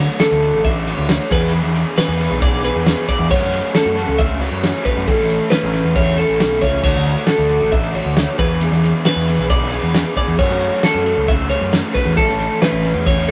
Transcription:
Already playing: D3 E3 F#3 A3 D4 F#4 C#5
0.20 D3 F#3 A3 D4 F#4 A4, snare, ride
0.31 D2
0.42 A3 D4 F#4, ride
0.53 A1
0.64 F#3 A3 D4 F#4 E5, kick, ride
0.86 A3 D4 F#4 C#5, ride
0.98 D2
1.09 snare, ride
1.30 E2 E3 B3 D4 G#4 B4, kick, crash
1.52 E3 B3 D4 G#4
1.63 E2, snare
1.75 snare, ride
1.96 E3 B3 D4 G#4 B4, snare, ride
2.08 E2
2.19 B3 D4 G#4, ride
2.30 B1
2.40 E3 B3 D4 G#4 D5, kick, ride
2.63 B3 D4 G#4 B4, ride
2.75 E2
2.86 snare, ride
3.07 B3 D4 G#4 D5, kick, ride
3.19 E2
3.31 F#2 F#3 A3 C#4 F#4 C#5, kick, crash
3.40 F#2, snare
3.52 snare, ride
3.74 F#3 A3 C#4 F#4 A4, snare, ride
3.86 F#2
3.96 A3 C#4 F#4, ride
4.08 C#2
4.18 F#3 A3 C#4 F#4 E5, kick, ride
4.40 A3 C#4 F#4 C#5, ride
4.51 F#2
4.64 snare, ride
4.85 A3 C#4 F#4 B4, kick, ride
4.97 F#2
5.06 A1 A2 E3 A3 C#4 E4 A4, kick, ride
5.19 A1, snare
5.30 ride
5.50 A2 E3 A3 C#4 E4 B4, snare, ride
5.63 A1
5.72 A3 C#4 E4, ride
5.84 E2
5.95 E3 A3 C#4 E4 C#5, kick, ride
6.18 A3 C#4 E4 A4, ride
6.29 A1
6.40 B1, snare, ride
6.61 C#2 A3 C#4 E4 C#5, kick, ride
6.83 D2 D3 A3 D4 F#4 C#5, kick, crash
6.95 D2, snare
7.05 snare, ride
7.27 D3 A3 D4 F#4 A4, snare, ride
7.38 D2
7.49 A3 D4 F#4, ride
7.60 A1
7.72 D3 A3 D4 F#4 E5, kick, ride
7.95 A3 D4 F#4 C#5, ride
8.05 D2
8.17 snare, ride
8.38 E2 E3 B3 D4 G#4 B4, kick, ride
8.61 E3 B3 D4 G#4, ride
8.72 E2, snare
8.84 snare, ride
9.05 E3 B3 D4 G#4 B4, snare, ride
9.16 E2
9.27 B3 D4 G#4, ride
9.39 B1
9.50 E3 B3 D4 G#4 D5, kick, ride
9.72 B3 D4 G#4 B4, ride
9.83 E2
9.94 snare, ride
10.17 B3 D4 G#4 D5, kick, ride
10.27 E2
10.38 F#2 F#3 A3 C#4 F#4 C#5, kick, crash
10.49 F#2, snare
10.61 ride
10.83 F#3 A3 C#4 F#4 A4, snare, ride
10.95 F#2
11.05 A3 C#4 F#4, ride
11.17 C#2
11.28 F#3 A3 C#4 F#4 E5, kick, ride
11.50 A3 C#4 F#4 C#5, ride
11.61 F#2
11.73 snare, ride
11.94 A3 C#4 F#4 B4, kick, ride
12.05 E2
12.17 A1 A2 E3 A3 C#4 E4 A4, kick, ride
12.28 A1, snare
12.40 snare, ride
12.61 A2 E3 A3 C#4 E4 B4, snare, ride
12.72 A1
12.83 A3 C#4 E4, ride
12.94 E2
13.05 E3 A3 C#4 E4 C#5, kick, ride
13.28 E4

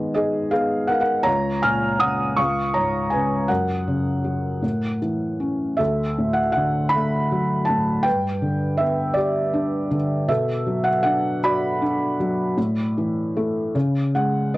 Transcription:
Already playing: G#2 D#3 B3 G#4 D#5
0.14 D#4 G#4 D#5
0.51 B3 G#4 F5
0.87 A#4 F#5
0.91 F5
1.00 A#4 F#5
1.23 C#2 C#5 A#5
1.62 A#2 G#5 F6
1.99 C#3 F#5 D#6
2.36 C#2 F5 C#6
2.74 G#2 C#5 A#5
3.10 C#3 B4 G#5
3.48 F#2 A#4 F#5
3.88 C#3
4.24 F#3
4.62 A2
5.02 E3
5.40 C#4
5.77 D2 A4 E5
6.18 A2
6.33 F#5
6.52 F#5
6.56 D3
6.89 B5
6.96 A3
7.32 F#3
7.65 A2 A5
8.03 B4 G5
8.07 G2
8.42 D3
8.77 B3 E5
9.14 G4 D5
9.53 D4
9.91 D3
10.28 B2 A4 E5
10.67 F#3
10.84 F#5
11.03 D4 F#5
11.44 F#4 D5 B5
11.82 D4
12.20 F#3
12.57 A2
12.98 E3
13.37 A3
13.75 C#3
14.15 G#3 F#5
14.54 B3 D#5

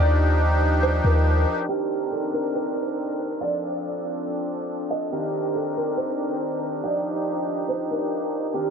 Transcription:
Already playing: D#2 F3 D4 D#4 G4 D5
0.83 C5
1.05 D#2 A#4
1.69 D#3 C4 D4 G4 A#4
2.11 A4
2.33 A#4
2.55 C5
3.40 F3 D4 A4 D5
4.91 D#5
5.12 D#3 C4 G4 A#4
5.55 A4
5.77 A#4
5.97 C5
6.83 F3 D#4 G4 D5
7.68 C5
7.91 A#4
8.54 D#3 C4 G4 A#4

